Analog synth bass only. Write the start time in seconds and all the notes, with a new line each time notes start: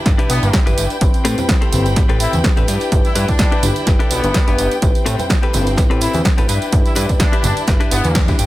0.06 G1
0.19 B1
0.30 B1
0.43 G1
0.67 G1
0.78 G1
1.01 A1
1.25 A2
1.73 G1
1.97 A1
2.10 A1
2.34 E2
2.58 A1
2.69 G2
2.92 G1
3.05 G2
3.16 G2
3.64 G1
3.87 G1
4.00 B1
4.11 B1
4.24 G1
4.48 G1
4.59 G1
4.83 A1
5.06 A2
5.54 G1
5.77 A1
5.91 A1
6.14 E2
6.38 A1
6.49 G2
6.73 G1
6.86 G2
6.96 G2
7.44 G1
7.68 G1
7.81 G1
7.92 G1
8.05 E2
8.39 G1